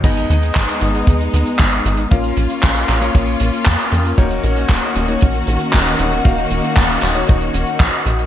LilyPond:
<<
  \new Staff \with { instrumentName = "Electric grand piano" } { \time 4/4 \key ees \minor \tempo 4 = 116 <ces' ees' aes' ees''>4.~ <ces' ees' aes' ees''>16 <ces' ees' aes' ees''>16 r2 | <bes des' f' f''>4.~ <bes des' f' f''>16 <bes des' f' des''>2~ <bes des' f' des''>16 | <bes ees' ges' des''>4.~ <bes ees' ges' des''>16 <bes ees' ges' des''>16 r2 | <bes ees' ges' f''>4.~ <bes ees' ges' f''>16 <bes ees' ges' des''>2~ <bes ees' ges' des''>16 | }
  \new Staff \with { instrumentName = "String section" } { \time 4/4 \key ees \minor << { ees'1 | f'1 | <ees ges'>1~ | <ees ges'>1 | } \\ { <aes ces'>1 | <bes des'>1~ | <bes des'>1~ | <bes des'>1 | } >> }
  \new Staff \with { instrumentName = "Analog synth bass" } { \clef bass \time 4/4 \key ees \minor aes,,8 ees,8 aes,,8 aes,,8 ees,8 ees,8 aes,,8 aes,,8 | bes,,8 bes,,8 bes,,8 bes,,8 bes,,8 bes,,8 f,8 f,8 | ees,,8 bes,,8 ees,,8 ees,,8 bes,,8 bes,,8 ees,,8 ees,,8 | ees,,8 ees,,8 ees,,8 ees,,8 ees,,8 ees,,8 bes,,8 bes,,8 | }
  \new DrumStaff \with { instrumentName = "Drums" } \drummode { \time 4/4 <cymc hh bd>16 hh16 hh16 hh16 <hc hh bd>16 hh16 hh16 hh16 <hh bd>16 hh16 hh16 hh16 <hc hh bd>16 hh16 hh16 hh16 | <hh bd>16 hh16 hh16 hh16 <hc hh bd>16 hh16 <hc hh>16 hh16 <hh bd>16 hh16 hh16 hh16 <hc hh bd>16 hh16 hh16 hh16 | <hh bd>16 hh16 hh16 hh16 <hc hh bd>16 hh16 hh16 hh16 <hh bd>16 hh16 hh16 hh16 <hc hh bd>16 hh16 hh16 hh16 | <hh bd>16 hh16 hh16 hh16 <hc hh bd>16 hh16 <hc hh>16 hh16 <hh bd>16 hh16 hh16 hh16 <hc hh bd>16 hh16 hh16 hh16 | }
>>